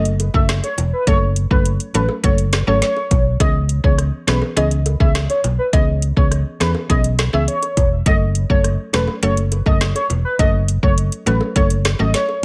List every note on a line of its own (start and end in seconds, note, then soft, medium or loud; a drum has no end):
0.00 0.28 F#1 loud
0.00 0.11 F#3 loud
0.00 0.11 A3 medium
0.00 0.11 C#4 medium
0.00 0.11 A4 loud
0.05 closed hi-hat medium
0.20 closed hi-hat medium
0.20 high bongo medium
0.34 0.60 F#1 medium
0.34 0.55 F#3 medium
0.34 0.55 A3 medium
0.34 0.55 C#4 medium
0.34 0.55 A4 medium
0.34 0.45 E5 medium
0.34 kick loud
0.34 high bongo medium
0.49 cross-stick medium
0.49 snare loud
0.49 closed hi-hat medium
0.63 0.75 C#5 medium
0.63 closed hi-hat medium
0.63 high bongo medium
0.78 0.91 E1 loud
0.78 closed hi-hat medium
0.78 low bongo medium
0.93 1.04 B4 medium
1.07 1.45 F#1 loud
1.07 1.28 F#3 loud
1.07 1.28 A3 medium
1.07 1.28 C#4 medium
1.07 1.28 A4 loud
1.07 1.18 C#5 loud
1.07 kick loud
1.07 closed hi-hat medium
1.07 high bongo medium
1.36 closed hi-hat medium
1.51 1.76 F#1 medium
1.51 1.91 F#3 medium
1.51 1.91 A3 medium
1.51 1.91 C#4 medium
1.51 1.91 A4 medium
1.51 1.62 B4 medium
1.51 kick loud
1.65 closed hi-hat medium
1.80 closed hi-hat medium
1.94 2.07 A1 medium
1.94 2.21 F#3 medium
1.94 2.21 A3 medium
1.94 2.22 C#4 medium
1.94 2.22 A4 medium
1.94 2.06 B4 medium
1.94 closed hi-hat medium
1.94 high bongo medium
1.94 low bongo medium
2.09 high bongo medium
2.23 2.62 F#1 medium
2.23 2.44 F#3 medium
2.23 2.44 A3 medium
2.23 2.44 C#4 medium
2.23 2.44 A4 loud
2.23 2.35 C#5 medium
2.23 kick medium
2.23 closed hi-hat medium
2.23 high bongo medium
2.38 closed hi-hat medium
2.53 cross-stick medium
2.53 snare loud
2.53 closed hi-hat medium
2.53 high bongo medium
2.67 2.80 G#1 loud
2.67 2.88 F#3 medium
2.67 2.88 A3 medium
2.67 2.88 C#4 medium
2.67 2.88 A4 medium
2.67 2.78 C#5 medium
2.67 high bongo medium
2.82 3.23 C#5 medium
2.82 snare medium
2.82 closed hi-hat medium
2.97 high bongo medium
3.11 3.36 B1 loud
3.11 kick loud
3.11 closed hi-hat medium
3.11 low bongo medium
3.40 3.78 C#2 loud
3.40 3.61 E3 medium
3.40 3.61 B3 medium
3.40 3.61 C#4 medium
3.40 3.61 G#4 loud
3.40 3.51 D#5 loud
3.40 kick loud
3.40 closed hi-hat medium
3.40 high bongo medium
3.69 closed hi-hat medium
3.84 4.09 C#2 medium
3.84 4.24 E3 medium
3.84 4.24 B3 medium
3.84 4.24 C#4 medium
3.84 4.24 G#4 medium
3.84 3.95 C#5 medium
3.84 kick medium
3.98 cross-stick medium
3.98 closed hi-hat medium
4.27 4.40 B1 medium
4.27 4.54 E3 medium
4.27 4.54 B3 medium
4.27 4.54 C#4 medium
4.27 4.55 G#4 medium
4.27 4.39 B4 medium
4.27 cross-stick medium
4.27 snare loud
4.27 closed hi-hat medium
4.27 high bongo medium
4.27 low bongo medium
4.42 high bongo medium
4.56 4.95 C#2 medium
4.56 4.77 E3 loud
4.56 4.77 B3 medium
4.56 4.77 C#4 medium
4.56 4.77 G#4 loud
4.56 4.68 D#5 medium
4.56 closed hi-hat medium
4.56 high bongo medium
4.71 closed hi-hat medium
4.86 closed hi-hat medium
4.86 high bongo medium
5.00 5.26 C#2 loud
5.00 5.21 E3 medium
5.00 5.21 B3 medium
5.00 5.21 C#4 medium
5.00 5.21 G#4 medium
5.00 5.11 E5 medium
5.00 kick loud
5.00 high bongo medium
5.15 cross-stick medium
5.15 snare loud
5.15 closed hi-hat medium
5.30 5.40 C#5 medium
5.30 closed hi-hat medium
5.30 high bongo medium
5.44 5.57 B1 loud
5.44 closed hi-hat medium
5.44 low bongo medium
5.59 5.69 B4 medium
5.73 6.11 C#2 loud
5.73 5.94 E3 medium
5.73 5.94 B3 medium
5.73 5.94 C#4 medium
5.73 5.94 G#4 loud
5.73 5.84 D#5 loud
5.73 kick loud
5.73 closed hi-hat medium
5.73 high bongo medium
6.02 closed hi-hat medium
6.17 6.42 C#2 loud
6.17 6.57 E3 medium
6.17 6.57 B3 medium
6.17 6.57 C#4 medium
6.17 6.57 G#4 medium
6.17 6.28 C#5 medium
6.17 kick loud
6.31 cross-stick medium
6.31 closed hi-hat medium
6.60 6.73 E2 medium
6.60 6.87 E3 medium
6.60 6.87 B3 medium
6.60 6.87 C#4 medium
6.60 6.88 G#4 medium
6.60 6.71 B4 medium
6.60 cross-stick medium
6.60 snare loud
6.60 closed hi-hat medium
6.60 high bongo medium
6.60 low bongo medium
6.75 high bongo medium
6.89 7.28 B1 loud
6.89 7.10 E3 medium
6.89 7.10 B3 medium
6.89 7.10 C#4 medium
6.89 7.10 G#4 loud
6.89 7.01 D#5 medium
6.89 kick medium
6.89 closed hi-hat medium
6.89 high bongo medium
7.04 closed hi-hat medium
7.19 cross-stick medium
7.19 snare loud
7.19 closed hi-hat medium
7.19 high bongo medium
7.33 7.46 C#2 medium
7.33 7.54 E3 medium
7.33 7.54 B3 medium
7.33 7.54 C#4 medium
7.33 7.54 G#4 medium
7.33 7.44 E5 medium
7.33 high bongo medium
7.48 7.89 C#5 medium
7.48 closed hi-hat medium
7.62 closed hi-hat medium
7.62 high bongo medium
7.77 8.02 E1 loud
7.77 kick loud
7.77 closed hi-hat medium
7.77 low bongo medium
8.06 8.44 F#1 loud
8.06 8.27 F#3 loud
8.06 8.27 A3 medium
8.06 8.27 C#4 medium
8.06 8.27 A4 loud
8.06 8.17 D#5 loud
8.06 kick loud
8.06 closed hi-hat medium
8.06 high bongo medium
8.35 closed hi-hat medium
8.50 8.75 F#1 loud
8.50 8.90 F#3 medium
8.50 8.90 A3 medium
8.50 8.90 C#4 medium
8.50 8.90 A4 medium
8.50 8.61 C#5 medium
8.50 kick loud
8.64 cross-stick medium
8.64 closed hi-hat medium
8.93 9.06 E1 medium
8.93 9.20 F#3 medium
8.93 9.20 A3 medium
8.93 9.21 C#4 medium
8.93 9.21 A4 medium
8.93 9.04 B4 medium
8.93 cross-stick medium
8.93 snare loud
8.93 closed hi-hat medium
8.93 high bongo medium
8.93 low bongo medium
9.07 high bongo medium
9.23 9.60 F#1 loud
9.23 9.43 F#3 loud
9.23 9.43 A3 medium
9.23 9.43 C#4 medium
9.23 9.43 A4 loud
9.23 9.34 C#5 medium
9.23 closed hi-hat medium
9.23 high bongo medium
9.37 closed hi-hat medium
9.52 closed hi-hat medium
9.52 high bongo medium
9.66 9.92 F#1 medium
9.66 9.87 F#3 medium
9.66 9.87 A3 medium
9.66 9.87 C#4 medium
9.66 9.87 A4 medium
9.66 9.77 D#5 medium
9.66 kick loud
9.66 high bongo medium
9.81 cross-stick medium
9.81 snare loud
9.81 closed hi-hat medium
9.95 10.06 C#5 medium
9.95 closed hi-hat medium
9.95 high bongo medium
10.10 10.23 E1 loud
10.10 closed hi-hat medium
10.10 low bongo medium
10.25 10.36 B4 medium
10.39 10.77 F#1 loud
10.39 10.60 F#3 loud
10.39 10.60 A3 medium
10.39 10.60 C#4 medium
10.39 10.60 A4 loud
10.39 10.50 D#5 loud
10.39 kick loud
10.39 closed hi-hat medium
10.39 high bongo medium
10.68 closed hi-hat medium
10.83 11.08 F#1 loud
10.83 11.23 F#3 medium
10.83 11.23 A3 medium
10.83 11.23 C#4 medium
10.83 11.23 A4 medium
10.83 10.94 C#5 medium
10.83 kick loud
10.98 closed hi-hat medium
11.12 closed hi-hat medium
11.26 11.39 A1 medium
11.26 11.53 F#3 medium
11.26 11.53 A3 medium
11.26 11.54 C#4 medium
11.26 11.54 A4 medium
11.26 11.37 B4 medium
11.26 closed hi-hat medium
11.26 high bongo medium
11.26 low bongo medium
11.41 high bongo medium
11.56 11.94 F#1 medium
11.56 11.76 F#3 loud
11.56 11.76 A3 medium
11.56 11.76 C#4 medium
11.56 11.77 A4 loud
11.56 11.67 C#5 medium
11.56 kick medium
11.56 closed hi-hat medium
11.56 high bongo medium
11.70 closed hi-hat medium
11.85 cross-stick medium
11.85 snare loud
11.85 closed hi-hat medium
11.85 high bongo medium
11.99 12.12 G#1 loud
11.99 12.20 F#3 medium
11.99 12.20 A3 medium
11.99 12.20 C#4 medium
11.99 12.20 A4 medium
11.99 12.10 D#5 medium
11.99 high bongo medium
12.14 12.45 C#5 medium
12.14 snare medium
12.14 closed hi-hat medium
12.29 high bongo medium